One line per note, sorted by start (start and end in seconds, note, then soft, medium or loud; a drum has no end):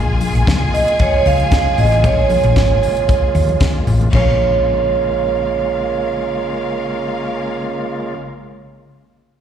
0.00 0.20 A#1 loud
0.00 4.10 C#3 medium
0.00 4.09 G#3 medium
0.00 4.09 A#3 medium
0.00 4.09 F4 medium
0.00 3.83 G#4 medium
0.00 3.83 G#5 loud
0.21 open hi-hat medium
0.21 muted conga soft
0.21 high conga medium
0.35 0.44 A#1 medium
0.35 closed hi-hat medium
0.47 0.67 C#2 medium
0.47 kick loud
0.47 snare loud
0.47 closed hi-hat medium
0.47 muted conga soft
0.47 high conga medium
0.73 1.00 D#5 medium
0.73 open hi-hat medium
0.73 muted conga soft
0.73 low conga medium
0.88 closed hi-hat medium
0.99 1.25 C#5 medium
0.99 kick loud
0.99 closed hi-hat medium
0.99 muted conga soft
0.99 high conga medium
1.25 1.46 C#2 loud
1.25 1.80 F5 loud
1.25 open hi-hat medium
1.25 muted conga soft
1.39 closed hi-hat soft
1.39 high conga medium
1.51 kick loud
1.51 snare loud
1.51 closed hi-hat medium
1.51 muted conga soft
1.78 2.04 A1 medium
1.78 2.03 D#5 medium
1.78 open hi-hat medium
1.78 low conga medium
1.92 closed hi-hat soft
2.03 2.35 A#1 medium
2.03 3.57 C#5 medium
2.03 kick loud
2.03 closed hi-hat medium
2.03 muted conga soft
2.30 open hi-hat medium
2.30 muted conga soft
2.30 high conga medium
2.44 2.54 A#1 medium
2.44 closed hi-hat medium
2.56 2.77 G#1 medium
2.56 kick loud
2.56 snare loud
2.56 closed hi-hat medium
2.56 muted conga soft
2.56 high conga medium
2.82 open hi-hat medium
2.82 muted conga soft
2.82 low conga medium
2.97 closed hi-hat medium
3.08 kick loud
3.08 closed hi-hat medium
3.08 high conga medium
3.35 3.55 D#2 loud
3.35 open hi-hat medium
3.35 muted conga soft
3.48 closed hi-hat soft
3.48 high conga medium
3.60 kick loud
3.60 snare loud
3.60 closed hi-hat medium
3.60 muted conga soft
3.87 4.07 A1 medium
3.87 open hi-hat medium
3.87 low conga medium
4.01 closed hi-hat soft
4.01 low conga medium
4.13 8.14 A#1 medium
4.13 8.14 C#3 medium
4.13 8.15 G#3 medium
4.13 8.14 A#3 medium
4.13 8.14 C#4 medium
4.13 8.15 F4 medium
4.13 8.14 A#4 medium
4.13 8.15 C#5 medium
4.13 8.14 F5 loud
4.13 kick loud
4.13 crash medium
4.13 high conga medium